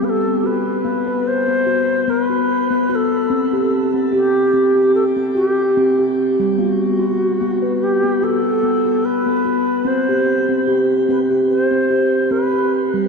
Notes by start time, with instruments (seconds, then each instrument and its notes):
0.02 steel tongue drum B3, native american-style wooden flute B4
0.09 native american-style wooden flute A4
0.44 steel tongue drum F#4, native american-style wooden flute B4
0.85 steel tongue drum B3
1.07 steel tongue drum B4
1.27 native american-style wooden flute C5
1.48 steel tongue drum B3
1.66 steel tongue drum F#4
2.08 steel tongue drum B3, native american-style wooden flute A#4
2.21 native american-style wooden flute B4
2.30 steel tongue drum F#4
2.70 steel tongue drum B3
2.89 steel tongue drum F#4, native american-style wooden flute B4
2.95 native american-style wooden flute A4
3.30 steel tongue drum C4
3.53 steel tongue drum G4
3.94 steel tongue drum C4
4.13 steel tongue drum G4, native american-style wooden flute G4
4.54 steel tongue drum C4
4.76 steel tongue drum G4
4.95 native american-style wooden flute A4
5.16 steel tongue drum C4
5.35 native american-style wooden flute F#4, steel tongue drum G4
5.47 native american-style wooden flute G4
5.77 steel tongue drum C4
5.99 steel tongue drum G4
6.39 steel tongue drum G3
6.58 steel tongue drum B3, native american-style wooden flute F#4
6.99 steel tongue drum F#4
7.41 steel tongue drum B3
7.62 steel tongue drum B4
7.83 native american-style wooden flute G4
8.03 steel tongue drum B3
8.22 steel tongue drum F#4, native american-style wooden flute A4
8.63 steel tongue drum B3
8.85 steel tongue drum F#4
9.05 native american-style wooden flute B4
9.26 steel tongue drum B3
9.45 steel tongue drum F#4
9.85 steel tongue drum C4, native american-style wooden flute C5
10.09 steel tongue drum G4
10.49 steel tongue drum C4
10.68 steel tongue drum G4
11.09 steel tongue drum C4, native american-style wooden flute B4
11.31 steel tongue drum G4
11.50 native american-style wooden flute C5
11.71 steel tongue drum C4
11.90 steel tongue drum G4
12.31 steel tongue drum C4, native american-style wooden flute A#4
12.42 native american-style wooden flute B4
12.53 steel tongue drum G4
12.94 steel tongue drum G3